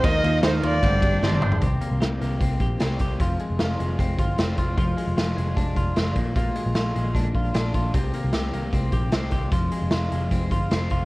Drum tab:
RD |x-x-x-x-x-x-----|----------------|----------------|----------------|
HH |----------------|x-x-x-x-x-x-x-x-|x-x-x-x-x-x-x-x-|x-x-x-x-x-x-x-x-|
SD |----o-------o---|----o-------o---|----o-------o---|----o-------o---|
T1 |-------------o--|----------------|----------------|----------------|
T2 |--------------o-|----------------|----------------|----------------|
FT |---------------o|----------------|----------------|----------------|
BD |o-------o-o-----|o-------o-o---o-|o-------o-o---o-|o-------o-o---o-|

RD |----------------|----------------|----------------|
HH |x-x-x-x-x-x-x-x-|x-x-x-x-x-x-x-x-|x-x-x-x-x-x-x-x-|
SD |----o-------o---|----o-------o---|----o-------o---|
T1 |----------------|----------------|----------------|
T2 |----------------|----------------|----------------|
FT |----------------|----------------|----------------|
BD |o-------o-o---o-|o-------o-o---o-|o-------o-o---o-|